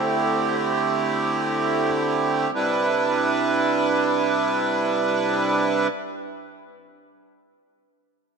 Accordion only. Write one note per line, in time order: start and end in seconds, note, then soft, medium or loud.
0.00 2.51 D3 medium
0.00 2.51 A3 medium
0.00 2.51 C4 medium
0.00 2.51 E4 medium
0.00 2.51 G4 medium
2.55 5.87 C3 medium
2.55 5.87 G3 medium
2.55 5.88 D4 medium
2.55 5.88 E4 medium
2.55 5.87 B4 medium